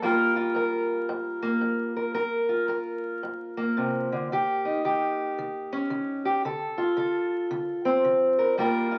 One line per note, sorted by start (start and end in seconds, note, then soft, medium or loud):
0.02 0.52 G2 medium
0.02 2.52 G3 medium
0.02 1.42 A#3 medium
0.02 0.36 F4 medium
0.02 0.56 A#4 medium
0.36 2.14 F4 medium
0.55 1.05 G2 medium
0.55 1.96 A#4 medium
1.09 1.59 G2 medium
1.42 3.56 A#3 medium
1.61 2.12 G2 medium
1.96 2.14 A#4 soft
2.14 2.65 G2 medium
2.14 2.69 A#4 medium
2.49 4.27 F4 medium
2.68 3.19 G2 medium
2.68 4.27 A#4 soft
3.23 3.73 G2 medium
3.57 5.71 A#3 medium
3.77 4.11 C3 medium
4.12 4.31 D3 medium
4.32 4.81 D#3 medium
4.32 4.84 G4 medium
4.65 6.42 D#4 medium
4.85 5.34 D#3 medium
4.85 6.24 G4 medium
5.38 5.87 D#3 medium
5.72 6.42 C#4 medium
5.90 6.40 D#3 medium
6.25 6.44 G4 medium
6.45 6.94 D3 medium
6.45 6.96 A4 medium
6.78 8.59 F4 medium
6.97 7.46 D3 medium
6.97 8.37 A4 medium
7.51 8.00 D3 medium
7.85 8.55 C4 medium
8.04 8.53 D3 medium
8.39 8.55 A#4 medium
8.57 8.98 G2 medium
8.57 8.98 G3 medium
8.57 8.98 A#3 medium
8.57 8.91 F4 medium
8.57 8.98 A#4 medium
8.91 8.98 F4 medium